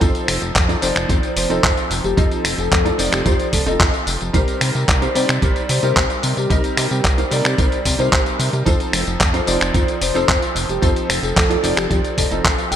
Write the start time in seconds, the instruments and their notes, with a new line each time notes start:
0.01 analog synth bass F2, electric grand piano F3 C4 D#4 A4, clean electric guitar D#4 F4 A4 C5, kick, closed hi-hat, tambourine
0.15 closed hi-hat, tambourine
0.28 analog synth bass F1, finger snap, open hi-hat, tambourine
0.42 analog synth bass F1, closed hi-hat, tambourine
0.55 analog synth bass F2, kick, clap, closed hi-hat, tambourine
0.68 clean electric guitar D#4 F4 A4 D5, closed hi-hat, tambourine
0.82 analog synth bass F1, electric grand piano F3 C4 D#4 D5, soft synth lead C5, open hi-hat, tambourine
0.96 analog synth bass F1, finger snap, closed hi-hat, tambourine
1.09 analog synth bass F2, clean electric guitar D#4 F4 A4 C5, kick, closed hi-hat, tambourine
1.23 closed hi-hat, tambourine
1.36 analog synth bass F1, soft synth lead C5, open hi-hat, tambourine
1.49 analog synth bass F1, electric grand piano F3 C4 D#4 A4, clean electric guitar D#4 F4 A4 D#5, closed hi-hat, tambourine
1.63 analog synth bass F2, kick, clap, closed hi-hat, tambourine
1.77 closed hi-hat, tambourine
1.91 analog synth bass F1, open hi-hat, tambourine
2.04 analog synth bass F1, soft synth lead G4, muted clean electric guitar stroke, closed hi-hat, tambourine
2.17 analog synth bass F2, electric grand piano F3 C4 D#4 A4, clean electric guitar D#4 F4 A4 D#5, kick, closed hi-hat, tambourine
2.31 closed hi-hat, tambourine
2.45 analog synth bass F1, finger snap, open hi-hat, tambourine
2.58 analog synth bass F1, soft synth lead A4, closed hi-hat, tambourine
2.72 analog synth bass F2, kick, clap, closed hi-hat, tambourine
2.85 clean electric guitar D#4 F4 A4 D5, closed hi-hat, tambourine
2.98 analog synth bass F1, electric grand piano F3 C4 D#4 D5, open hi-hat, tambourine
3.12 analog synth bass F1, soft synth lead G4, finger snap, closed hi-hat, tambourine
3.25 analog synth bass F2, clean electric guitar D#4 F4 A4 C5, soft synth lead G4, kick, closed hi-hat, tambourine
3.40 closed hi-hat, tambourine
3.53 analog synth bass F1, soft synth lead A4, kick, open hi-hat, tambourine
3.66 analog synth bass F1, electric grand piano F3 C4 D#4 A4, clean electric guitar D#4 F4 A4 D#5, soft synth lead A4, closed hi-hat, tambourine
3.80 analog synth bass F2, kick, clap, closed hi-hat, tambourine
3.94 closed hi-hat, tambourine
4.07 analog synth bass F1, open hi-hat, tambourine
4.21 analog synth bass F1, muted clean electric guitar stroke, closed hi-hat, tambourine
4.33 analog synth bass C2, electric grand piano G3 C4 D#4 A#4, clean electric guitar D#4 G4 A#4 C5, kick, closed hi-hat, tambourine
4.48 closed hi-hat, tambourine
4.61 analog synth bass C3, finger snap, open hi-hat, tambourine
4.75 analog synth bass C3, closed hi-hat, tambourine
4.88 analog synth bass C2, kick, clap, closed hi-hat, tambourine
5.02 clean electric guitar D#4 G4 A#4 C5, closed hi-hat, tambourine
5.15 analog synth bass C3, electric grand piano G3 C4 D#4 D5, soft synth lead C5, open hi-hat, tambourine
5.29 analog synth bass C3, finger snap, tambourine
5.42 analog synth bass C2, clean electric guitar D#4 G4 A#4 C5, kick, closed hi-hat, tambourine
5.56 closed hi-hat, tambourine
5.69 analog synth bass C3, soft synth lead C5, open hi-hat, tambourine
5.82 analog synth bass C3, electric grand piano G3 C4 D#4 A#4, clean electric guitar D#4 G4 A#4 D5, closed hi-hat, tambourine
5.96 analog synth bass C2, kick, clap, closed hi-hat, tambourine
6.10 closed hi-hat, tambourine
6.23 analog synth bass C3, open hi-hat, tambourine
6.37 analog synth bass C3, soft synth lead G4, muted clean electric guitar stroke, closed hi-hat, tambourine
6.50 analog synth bass C2, electric grand piano G3 C4 D#4 A#4, clean electric guitar D#4 G4 A#4 D#5, kick, closed hi-hat, tambourine
6.64 closed hi-hat, tambourine
6.77 analog synth bass C3, finger snap, open hi-hat, tambourine
6.91 analog synth bass C3, soft synth lead G4, closed hi-hat, tambourine
7.04 analog synth bass C2, kick, clap, closed hi-hat, tambourine
7.18 clean electric guitar D#4 G4 A#4 C5, closed hi-hat, tambourine
7.31 analog synth bass C3, electric grand piano G3 C4 D#4 D5, soft synth lead A#4, open hi-hat, tambourine
7.45 analog synth bass C3, finger snap, closed hi-hat, tambourine
7.58 analog synth bass C2, clean electric guitar D#4 G4 A#4 C5, kick, closed hi-hat, tambourine
7.72 closed hi-hat, tambourine
7.85 analog synth bass C3, kick, open hi-hat, tambourine
7.98 analog synth bass C3, electric grand piano G3 C4 D#4 A#4, clean electric guitar D#4 G4 A#4 C5, soft synth lead C5, closed hi-hat, tambourine
8.12 analog synth bass C2, soft synth lead C5, kick, clap, closed hi-hat, tambourine
8.26 closed hi-hat, tambourine
8.39 analog synth bass C3, open hi-hat, tambourine
8.53 analog synth bass C3, muted clean electric guitar stroke, closed hi-hat, tambourine
8.65 analog synth bass F2, electric grand piano F3 C4 D#4 A4, clean electric guitar D#4 F4 A4 C5, kick, closed hi-hat, tambourine
8.80 closed hi-hat, tambourine
8.93 analog synth bass F1, finger snap, open hi-hat, tambourine
9.07 analog synth bass F1, closed hi-hat, tambourine
9.20 analog synth bass F2, kick, clap, closed hi-hat, tambourine
9.33 clean electric guitar D#4 F4 A4 C5, closed hi-hat, tambourine
9.46 analog synth bass F1, electric grand piano F3 C4 D#4 D5, soft synth lead C5, open hi-hat, tambourine
9.61 analog synth bass F1, finger snap, closed hi-hat, tambourine
9.74 analog synth bass F2, clean electric guitar D#4 F4 A4 C5, kick, closed hi-hat, tambourine
9.88 closed hi-hat, tambourine
10.01 analog synth bass F1, soft synth lead C5, open hi-hat, tambourine
10.14 analog synth bass F1, electric grand piano F3 C4 D#4 A4, clean electric guitar D#4 F4 A4 C5, closed hi-hat, tambourine
10.29 analog synth bass F2, kick, clap, closed hi-hat, tambourine
10.42 closed hi-hat, tambourine
10.55 analog synth bass F1, open hi-hat, tambourine
10.69 analog synth bass F1, soft synth lead G4, muted clean electric guitar stroke, closed hi-hat, tambourine
10.82 analog synth bass F2, electric grand piano F3 C4 D#4 A4, clean electric guitar D#4 F4 A4 C5, kick, closed hi-hat, tambourine
10.96 closed hi-hat, tambourine
11.09 analog synth bass F1, finger snap, open hi-hat, tambourine
11.23 analog synth bass F1, soft synth lead A4, closed hi-hat, tambourine
11.36 analog synth bass F2, kick, clap, closed hi-hat, tambourine
11.50 clean electric guitar D#4 F4 A4 D5, closed hi-hat, tambourine
11.63 analog synth bass F1, electric grand piano F3 C4 D#4 D5, open hi-hat, tambourine
11.77 analog synth bass F1, soft synth lead G4, finger snap, closed hi-hat, tambourine
11.90 analog synth bass F2, clean electric guitar D#4 F4 A4 D5, soft synth lead G4, kick, closed hi-hat, tambourine
12.05 closed hi-hat, tambourine
12.18 analog synth bass F1, soft synth lead A4, clean electric guitar D#5, kick, open hi-hat, tambourine
12.30 analog synth bass F1, electric grand piano F3 C4 D#4 A4, clean electric guitar D#4 F4 A4 D#5, soft synth lead A4, closed hi-hat, tambourine
12.45 analog synth bass F2, clean electric guitar F5, kick, clap, closed hi-hat, tambourine
12.59 closed hi-hat, tambourine
12.71 analog synth bass F1, clean electric guitar G5, open hi-hat, tambourine